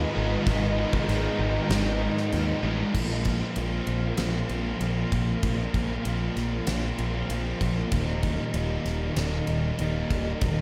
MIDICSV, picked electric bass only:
0, 0, Header, 1, 2, 480
1, 0, Start_track
1, 0, Tempo, 621762
1, 363, Time_signature, 4, 2, 24, 8
1, 8193, End_track
2, 0, Start_track
2, 0, Title_t, "Picked electric bass"
2, 0, Program_c, 0, 34
2, 129, Note_on_c, 0, 32, 95
2, 271, Note_off_c, 0, 32, 0
2, 358, Note_on_c, 0, 32, 90
2, 647, Note_off_c, 0, 32, 0
2, 837, Note_on_c, 0, 32, 98
2, 982, Note_off_c, 0, 32, 0
2, 1073, Note_on_c, 0, 32, 86
2, 1219, Note_off_c, 0, 32, 0
2, 1308, Note_on_c, 0, 32, 101
2, 1599, Note_off_c, 0, 32, 0
2, 1799, Note_on_c, 0, 39, 92
2, 1943, Note_off_c, 0, 39, 0
2, 2030, Note_on_c, 0, 33, 90
2, 2176, Note_off_c, 0, 33, 0
2, 2274, Note_on_c, 0, 34, 80
2, 2624, Note_off_c, 0, 34, 0
2, 2753, Note_on_c, 0, 34, 87
2, 2929, Note_off_c, 0, 34, 0
2, 2990, Note_on_c, 0, 34, 80
2, 3167, Note_off_c, 0, 34, 0
2, 3234, Note_on_c, 0, 34, 86
2, 3409, Note_off_c, 0, 34, 0
2, 3470, Note_on_c, 0, 34, 81
2, 3647, Note_off_c, 0, 34, 0
2, 3711, Note_on_c, 0, 34, 78
2, 3887, Note_off_c, 0, 34, 0
2, 3954, Note_on_c, 0, 34, 87
2, 4129, Note_off_c, 0, 34, 0
2, 4193, Note_on_c, 0, 34, 88
2, 4369, Note_off_c, 0, 34, 0
2, 4432, Note_on_c, 0, 34, 86
2, 4608, Note_off_c, 0, 34, 0
2, 4675, Note_on_c, 0, 34, 86
2, 4850, Note_off_c, 0, 34, 0
2, 4915, Note_on_c, 0, 34, 84
2, 5090, Note_off_c, 0, 34, 0
2, 5153, Note_on_c, 0, 34, 89
2, 5329, Note_off_c, 0, 34, 0
2, 5395, Note_on_c, 0, 34, 83
2, 5571, Note_off_c, 0, 34, 0
2, 5631, Note_on_c, 0, 34, 84
2, 5808, Note_off_c, 0, 34, 0
2, 5876, Note_on_c, 0, 34, 87
2, 6051, Note_off_c, 0, 34, 0
2, 6116, Note_on_c, 0, 27, 81
2, 6467, Note_off_c, 0, 27, 0
2, 6593, Note_on_c, 0, 27, 87
2, 6770, Note_off_c, 0, 27, 0
2, 6836, Note_on_c, 0, 27, 78
2, 7012, Note_off_c, 0, 27, 0
2, 7075, Note_on_c, 0, 27, 96
2, 7252, Note_off_c, 0, 27, 0
2, 7320, Note_on_c, 0, 27, 89
2, 7495, Note_off_c, 0, 27, 0
2, 7562, Note_on_c, 0, 27, 82
2, 7737, Note_off_c, 0, 27, 0
2, 7799, Note_on_c, 0, 27, 80
2, 7975, Note_off_c, 0, 27, 0
2, 8043, Note_on_c, 0, 27, 89
2, 8193, Note_off_c, 0, 27, 0
2, 8193, End_track
0, 0, End_of_file